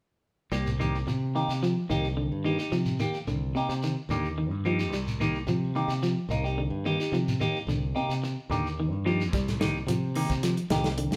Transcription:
0.52 fingered electric bass C2, clean electric guitar G3 A#3 G4, muted clean electric guitar stroke, shekere
0.67 shekere
0.79 clean electric guitar D#3 A#3 D#4 G4, shekere
0.95 shekere
1.07 fingered electric bass C3, muted clean electric guitar stroke, shekere
1.35 clean electric guitar D#3 A#3 D#4 G4, shekere
1.49 fingered electric bass C3, shekere
1.63 clean electric guitar F3, shekere
1.89 fingered electric bass C2, clean electric guitar D#3 A#3 D#4 G4, shekere
2.05 shekere
2.17 clean electric guitar D3
2.32 fingered electric bass G2
2.44 clean electric guitar D#3 A#3 D#4 G4, shekere
2.59 clean electric guitar D#4 G4, shekere
2.72 fingered electric bass C3, clean electric guitar F3, shekere
2.85 shekere
2.99 clean electric guitar D#3 A#3 G4, muted clean electric guitar stroke, shekere
3.14 shekere
3.27 fingered electric bass C2, clean electric guitar D3, shekere
3.55 clean electric guitar C3 A#3 D#4 G4, shekere
3.69 fingered electric bass C3, shekere
3.83 clean electric guitar D#3, shekere
4.09 fingered electric bass D#2, clean electric guitar D3 A#3 D#4 G4, shekere
4.24 shekere
4.38 clean electric guitar D#3
4.51 fingered electric bass G2
4.65 clean electric guitar F3 A#3 D#4 G4, shekere
4.79 clean electric guitar D#4 G4, shekere
4.92 fingered electric bass C2, clean electric guitar G3, shekere
5.07 shekere
5.20 clean electric guitar D#3 A#3 D#4 G4, shekere
5.35 shekere
5.47 fingered electric bass C3, clean electric guitar F3, shekere
5.75 clean electric guitar D#3 A#3 D#4 G4, shekere
5.88 fingered electric bass C3, shekere
6.03 clean electric guitar F3, shekere
6.29 fingered electric bass C2, clean electric guitar A#3 D#4, muted clean electric guitar stroke, shekere
6.44 clean electric guitar D#4 G4, shekere
6.58 clean electric guitar D3
6.70 fingered electric bass G2
6.85 clean electric guitar D#3 A#3 D#4 G4, shekere
7.00 clean electric guitar D#4 G4, shekere
7.12 fingered electric bass C3, clean electric guitar F3, shekere
7.28 shekere
7.40 clean electric guitar D#3 A#3 D#4 G4, shekere
7.56 shekere
7.67 fingered electric bass C2, clean electric guitar D3, shekere
7.95 clean electric guitar C3 A#3 D#4 G4, shekere
8.09 fingered electric bass C3, shekere
8.23 muted clean electric guitar stroke, shekere
8.50 fingered electric bass D#2, clean electric guitar D3 A#3 D#4 G4, shekere
8.66 shekere
8.80 clean electric guitar D#3
8.92 fingered electric bass G2
9.05 clean electric guitar F3 A#3 D#4 G4, shekere
9.21 shekere
9.33 fingered electric bass C2, clean electric guitar G3, kick, closed hi-hat, shekere
9.48 snare, closed hi-hat, shekere
9.60 clean electric guitar D#3 A#3 D#4 G4, snare, closed hi-hat, shekere
9.76 shekere
9.87 fingered electric bass C3, clean electric guitar F3, closed hi-hat, shekere
10.15 clean electric guitar D#3 A#3 D#4 G4, open hi-hat, shekere
10.29 fingered electric bass C3, kick, closed hi-hat, shekere
10.43 clean electric guitar F3, snare, closed hi-hat, shekere
10.57 closed hi-hat
10.70 fingered electric bass C2, clean electric guitar D#3 A#3 D#4 G4, snare, closed hi-hat, shekere
10.84 snare, closed hi-hat, shekere
10.98 clean electric guitar D3, closed hi-hat
11.11 fingered electric bass G2, snare, closed hi-hat

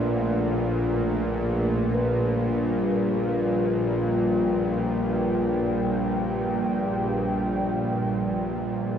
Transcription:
Already playing: synth drone A#1 A#2, analog synth pad A3 D4 B4 F#5
1.94 analog synth pad G3, singing bowl B4
3.44 analog synth pad G5

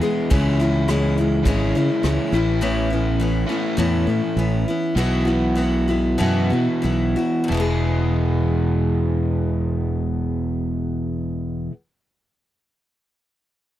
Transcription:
Already playing: overdriven electric guitar E3 G#3 B3 E4
0.01 steel-string acoustic guitar E3 G#3 B3 G#4, closed hi-hat
0.30 fingered electric bass C#2, steel-string acoustic guitar C#3 E3 G#3 C#4 E4, kick, closed hi-hat
0.60 steel-string acoustic guitar G#3 C#4 E4, closed hi-hat
0.88 steel-string acoustic guitar E3 G#3 C#4 E4, cross-stick, closed hi-hat
1.17 steel-string acoustic guitar G#3 C#4 E4, closed hi-hat
1.45 fingered electric bass G#1, steel-string acoustic guitar C#3 E3 G#3 C#4 E4, kick, closed hi-hat
1.75 fingered electric bass C#3, steel-string acoustic guitar G#3 C#4 E4, closed hi-hat
2.03 fingered electric bass C#2, steel-string acoustic guitar E3 G#3 C#4 E4, cross-stick, closed hi-hat
2.32 fingered electric bass A1, overdriven electric guitar A2 E3 A3, steel-string acoustic guitar C#4 E4, closed hi-hat
2.36 steel-string acoustic guitar B3
2.61 steel-string acoustic guitar A2 E3 B3 C#4 E4
2.90 steel-string acoustic guitar B3 C#4 E4
3.20 steel-string acoustic guitar E3 B3 C#4 E4
3.48 overdriven electric guitar A2 E3 A3, steel-string acoustic guitar B3 C#4 E4
3.77 fingered electric bass E2, steel-string acoustic guitar A2 E3 B3 C#4 E4
4.07 fingered electric bass A2, steel-string acoustic guitar B3 C#4 E4
4.36 fingered electric bass A1, steel-string acoustic guitar E3 B3 C#4 E4
4.68 steel-string acoustic guitar B3 C#4 E4
4.96 fingered electric bass B1, steel-string acoustic guitar B2 E3 B3 E4 F#4
5.25 steel-string acoustic guitar B3 E4 F#4
5.55 steel-string acoustic guitar E3 B3 E4 F#4
5.88 steel-string acoustic guitar B3 E4 F#4
6.18 fingered electric bass F#2, steel-string acoustic guitar B2 E3 B3 E4 F#4
6.50 fingered electric bass B2, steel-string acoustic guitar B3 E4 F#4
6.82 fingered electric bass B1, steel-string acoustic guitar E3 B3 E4 F#4
7.16 steel-string acoustic guitar B3 E4 F#4
7.44 steel-string acoustic guitar E2
7.48 fingered electric bass E1, overdriven electric guitar E2 B3, steel-string acoustic guitar B2 E3
7.52 steel-string acoustic guitar G#3, overdriven electric guitar E4
7.57 steel-string acoustic guitar B3 G#4

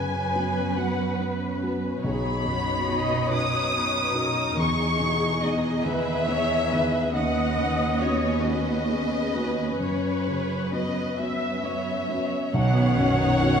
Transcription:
Already playing: grand piano F#2 C#3, cello section F#2, violin section B3 B4 G#5, viola section B4
0.14 violin section C#4
0.35 grand piano B3 C#4 F#4, violin section B3
0.56 violin section C#4
0.77 grand piano B3 C#4 F#4, violin section B3 F#5
1.00 violin section C#4
1.20 grand piano B3, violin section B3
1.41 violin section C#4
1.62 violin section B3, grand piano B3 C#4 F#4
1.83 violin section C#4
2.04 grand piano B1, cello section B2, violin section D#4 C#5 B5, viola section G#4
2.46 grand piano F#2, viola section F#4
2.88 grand piano C#4 D#4 F#4, viola section D#5
3.29 grand piano C#4 D#4 F#4, viola section B4, violin section D#6
3.73 grand piano C#4, viola section B4
4.14 grand piano C#4 D#4 F#4, viola section A#4
4.57 cello section E2, grand piano E2, viola section G#4, violin section G#4 C#6
5.00 grand piano B2
5.41 grand piano B3 D#4 G#4, violin section D#5
5.83 grand piano D#3 B3 G#4, viola section B4, violin section E5
6.28 grand piano B3, viola section C#5
6.71 grand piano D#3 B3 G#4, viola section B4
7.14 cello section D#2, grand piano D#2, violin section C#4 B4 F#5, viola section D#5
7.58 grand piano D#3
8.00 grand piano B3 C#4 F#4, violin section C#5
8.43 grand piano B3 C#4 F#4, viola section F#4, violin section D#5
8.90 grand piano B3, viola section G#4
9.36 grand piano B3 C#4 F#4, viola section B4
9.80 grand piano F#2, cello section F#2, viola section B4, violin section C#5
10.27 grand piano C#3
10.72 grand piano B3 C#4 F#4, violin section D#5
11.18 grand piano B3 C#4 F#4, violin section E5, viola section E5
11.63 grand piano B3, viola section C#5
12.09 grand piano B3 C#4 F#4, viola section C#5
12.53 grand piano B1, double bass section B1, cello section B2, french horn section D#3 C#4, viola section F#3 C#5, violin section F#5
12.75 viola section B3
12.97 grand piano F#2, viola section C#4
13.19 viola section D#4
13.40 viola section C#4, grand piano C#4 D#4 F#4

